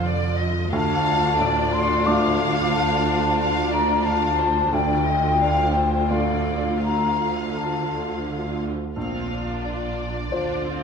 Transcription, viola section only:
0.00 0.69 D3 soft
0.00 0.69 F4 soft
0.73 4.69 D4 soft
0.73 4.69 F4 medium
4.73 8.72 D3 soft
4.73 8.72 F4 soft
8.96 9.28 C4 soft
9.30 10.31 D4 soft
10.32 10.65 D4 soft
10.66 10.83 C4 soft

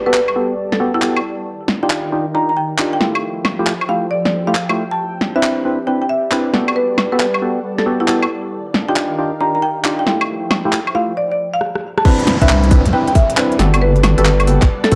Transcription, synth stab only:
0.06 0.20 B3 medium
0.06 0.20 F#4 medium
0.06 0.20 G4 medium
0.06 0.20 A4 loud
0.36 0.54 B3 medium
0.36 0.54 F#4 medium
0.36 0.54 G4 medium
0.36 0.54 A4 medium
0.80 0.92 B3 loud
0.80 0.92 F#4 medium
0.80 0.92 G4 medium
0.80 0.92 A4 loud
0.94 1.01 B3 medium
0.94 1.01 F#4 medium
0.94 1.01 G4 medium
0.94 1.01 A4 medium
1.02 1.20 B3 loud
1.02 1.20 F#4 medium
1.02 1.20 G4 medium
1.02 1.20 A4 loud
1.83 2.11 D4 medium
1.83 2.11 D#4 medium
1.83 2.11 F4 medium
1.83 2.11 G4 loud
2.12 2.26 D4 medium
2.12 2.25 D#4 medium
2.12 2.26 F4 medium
2.12 2.26 G4 loud
2.34 2.52 D4 medium
2.34 2.52 D#4 medium
2.34 2.52 F4 medium
2.34 2.52 G4 medium
2.79 2.99 D4 medium
2.79 2.99 D#4 medium
2.79 2.99 F4 medium
2.79 2.99 G4 loud
3.01 3.56 A3 medium
3.01 3.56 E4 medium
3.01 3.56 F4 medium
3.01 3.56 G4 medium
3.59 3.73 A3 loud
3.59 3.73 E4 medium
3.59 3.73 F4 medium
3.59 3.73 G4 loud
3.89 4.07 A3 medium
3.89 4.07 E4 medium
3.89 4.07 F4 medium
3.89 4.07 G4 medium
4.47 4.54 A3 medium
4.47 4.54 E4 medium
4.47 4.54 F4 medium
4.47 4.54 G4 loud
4.69 4.84 A3 medium
4.69 4.84 E4 medium
4.69 4.84 F4 medium
4.69 4.84 G4 medium
5.36 5.64 C4 medium
5.36 5.64 D4 medium
5.36 5.64 E4 medium
5.36 5.64 B4 loud
5.65 5.78 C4 medium
5.65 5.78 D4 medium
5.65 5.78 E4 medium
5.65 5.78 B4 loud
5.87 6.05 C4 medium
5.87 6.05 D4 medium
5.87 6.05 E4 medium
5.87 6.05 B4 medium
6.31 6.52 C4 medium
6.31 6.52 D4 medium
6.31 6.52 E4 medium
6.31 6.52 B4 loud
6.54 7.09 B3 medium
6.54 7.09 F#4 medium
6.54 7.09 G4 medium
6.54 7.09 A4 medium
7.12 7.26 B3 loud
7.12 7.26 F#4 medium
7.12 7.26 G4 medium
7.12 7.26 A4 loud
7.42 7.60 B3 medium
7.42 7.60 F#4 medium
7.42 7.60 G4 medium
7.42 7.60 A4 medium
7.86 7.98 B3 loud
7.86 7.98 F#4 medium
7.86 7.98 G4 medium
7.86 7.98 A4 loud
8.00 8.07 B3 medium
8.00 8.07 F#4 medium
8.00 8.07 G4 medium
8.00 8.07 A4 medium
8.08 8.26 B3 loud
8.08 8.26 F#4 medium
8.08 8.26 G4 medium
8.08 8.26 A4 loud
8.89 9.17 D4 medium
8.89 9.17 D#4 medium
8.89 9.17 F4 medium
8.89 9.17 G4 loud
9.18 9.31 D4 medium
9.18 9.31 D#4 medium
9.18 9.32 F4 medium
9.18 9.32 G4 loud
9.41 9.58 D4 medium
9.41 9.58 D#4 medium
9.41 9.58 F4 medium
9.41 9.58 G4 medium
9.85 10.05 D4 medium
9.85 10.05 D#4 medium
9.85 10.05 F4 medium
9.85 10.05 G4 loud
10.07 10.62 A3 medium
10.07 10.62 E4 medium
10.07 10.62 F4 medium
10.07 10.62 G4 medium
10.65 10.79 A3 medium
10.65 10.79 E4 medium
10.65 10.79 F4 medium
10.65 10.79 G4 loud
10.95 11.13 A3 medium
10.95 11.13 E4 medium
10.95 11.13 F4 medium
10.95 11.13 G4 medium
12.05 12.36 C4 loud
12.05 12.36 D4 medium
12.05 12.36 E4 medium
12.05 12.36 B4 loud
12.42 12.69 C4 loud
12.42 12.69 D4 medium
12.42 12.69 E4 medium
12.42 12.69 B4 loud
12.71 12.84 C4 medium
12.71 12.84 D4 medium
12.71 12.84 E4 medium
12.71 12.84 B4 loud
12.93 13.11 C4 medium
12.93 13.11 D4 medium
12.93 13.11 E4 medium
12.93 13.11 B4 medium
13.37 13.58 C4 medium
13.37 13.58 D4 medium
13.37 13.58 E4 medium
13.37 13.58 B4 loud
13.59 14.15 B3 medium
13.59 14.15 F#4 medium
13.59 14.15 G4 medium
13.59 14.15 A4 medium
14.18 14.32 B3 loud
14.18 14.32 F#4 medium
14.18 14.32 G4 medium
14.18 14.32 A4 loud
14.47 14.65 B3 medium
14.47 14.65 F#4 medium
14.47 14.66 G4 medium
14.47 14.65 A4 medium
14.92 14.95 B3 loud
14.92 14.95 F#4 medium
14.92 14.95 G4 loud
14.92 14.95 A4 loud

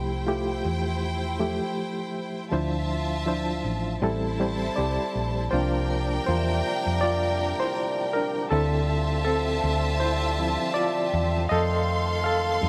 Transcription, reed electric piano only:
0.00 0.14 F3 medium
0.00 0.14 A3 medium
0.00 0.14 E4 medium
0.00 0.14 G4 medium
0.27 1.17 A3 medium
0.27 1.18 E4 medium
0.27 1.17 F4 medium
0.27 1.18 G4 medium
1.39 2.29 F3 medium
1.39 2.30 A3 medium
1.39 2.30 E4 medium
1.39 2.30 G4 medium
2.51 3.13 F3 medium
2.51 3.13 D4 medium
2.51 3.14 E4 medium
2.51 3.14 C5 medium
3.26 4.02 F3 medium
3.26 4.02 D4 medium
3.26 4.02 E4 medium
3.26 4.03 C5 medium
4.02 4.33 G3 medium
4.02 4.34 C4 medium
4.02 4.34 E4 medium
4.02 4.34 A4 medium
4.40 5.29 G3 medium
4.40 5.30 C4 medium
4.40 5.30 E4 medium
4.40 5.30 C5 medium
4.76 5.49 G4 medium
4.76 5.54 D5 medium
5.51 6.04 F3 medium
5.51 6.04 A#3 medium
5.51 6.05 D4 medium
5.51 6.23 F4 medium
5.51 6.25 C5 medium
6.26 6.99 F4 medium
6.26 6.97 C5 medium
7.01 7.57 F4 medium
7.01 7.62 D5 medium
7.60 8.11 E4 medium
7.60 8.15 C5 medium
8.13 8.50 D4 medium
8.13 8.52 A#4 medium
8.51 11.46 D3 medium
8.51 9.23 C4 medium
8.51 10.00 E4 medium
8.51 9.22 A4 medium
9.25 9.97 C4 medium
9.25 10.02 A4 medium
10.00 10.38 E4 medium
10.00 10.77 C5 medium
10.38 10.72 F3 soft
10.38 10.72 C4 soft
10.38 10.72 E4 medium
10.74 11.46 F4 medium
10.74 11.45 D5 loud
11.49 12.21 A4 medium
11.49 12.20 D#5 loud
12.24 12.69 A4 medium
12.24 12.69 F5 loud
12.61 12.69 G3 medium
12.61 12.69 A3 medium
12.61 12.69 D#4 medium

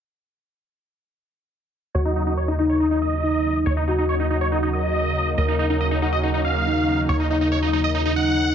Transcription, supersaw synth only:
1.95 2.01 C#5 loud
2.05 2.12 D#4 medium
2.16 2.23 D#4 medium
2.27 2.33 D#4 medium
2.37 2.44 C#5 medium
2.48 2.55 D#4 medium
2.59 2.65 D#4 medium
2.70 2.76 C#5 medium
2.80 2.87 D#4 medium
2.91 2.98 D#4 medium
3.02 3.58 D#5 medium
3.66 3.73 C#5 loud
3.77 3.83 D#4 medium
3.88 3.94 D#4 medium
3.98 4.05 D#4 medium
4.09 4.16 C#5 medium
4.20 4.26 D#4 medium
4.30 4.37 D#4 medium
4.41 4.48 C#5 medium
4.52 4.58 D#4 medium
4.63 4.69 D#4 medium
4.73 5.29 D#5 medium
5.38 5.44 D#5 medium
5.48 5.55 D#4 medium
5.59 5.66 D#4 medium
5.70 5.76 D#4 medium
5.81 5.87 D#5 medium
5.91 5.98 D#4 medium
6.02 6.09 D#4 medium
6.13 6.19 D#5 medium
6.23 6.30 D#4 medium
6.34 6.41 D#4 medium
6.45 7.00 F5 medium
7.09 7.16 C#5 medium
7.20 7.26 D#4 medium
7.30 7.37 D#4 medium
7.41 7.48 D#4 medium
7.52 7.58 C#5 medium
7.62 7.69 D#4 medium
7.73 7.80 D#4 medium
7.84 7.91 D#5 medium
7.95 8.01 D#4 medium
8.05 8.12 D#4 medium
8.16 8.55 F#5 medium

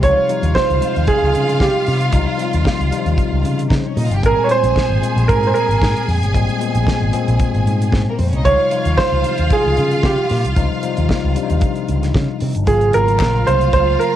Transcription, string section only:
0.01 3.61 F4 loud
0.01 3.61 F5 loud
3.69 3.79 A#3 soft
3.69 3.79 A#4 medium
3.79 3.88 C4 medium
3.79 3.88 C5 medium
3.87 3.96 C#4 medium
3.87 3.96 C#5 medium
3.96 4.05 D#4 medium
3.96 4.05 D#5 medium
4.05 4.14 F4 medium
4.05 4.14 F5 medium
4.14 4.23 G4 medium
4.14 4.23 G5 medium
4.22 8.01 G#4 medium
4.22 8.01 G#5 loud
8.10 8.19 A#3 medium
8.10 8.19 A#4 medium
8.19 8.28 C4 medium
8.19 8.28 C5 medium
8.28 8.37 C#4 medium
8.28 8.36 C#5 medium
8.36 8.45 D#4 medium
8.36 8.45 D#5 medium
8.45 12.37 F4 loud
8.45 12.37 F5 loud
12.67 14.16 F4 medium
12.67 14.16 F5 loud

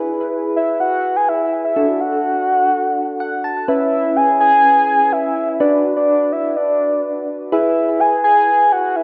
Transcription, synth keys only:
0.00 1.72 E4 medium
0.00 1.72 G#4 medium
0.00 1.72 B4 medium
1.76 3.64 D4 medium
1.76 3.64 F#4 medium
1.76 3.64 A4 medium
3.20 3.43 F#5 medium
3.44 3.67 A5 medium
3.68 5.56 C#4 medium
3.68 5.56 E4 medium
3.68 5.56 B4 medium
5.60 7.48 D4 medium
5.60 7.48 F#4 medium
5.60 7.48 B4 medium
7.52 9.03 E4 medium
7.52 9.03 G#4 medium
7.52 9.03 B4 medium

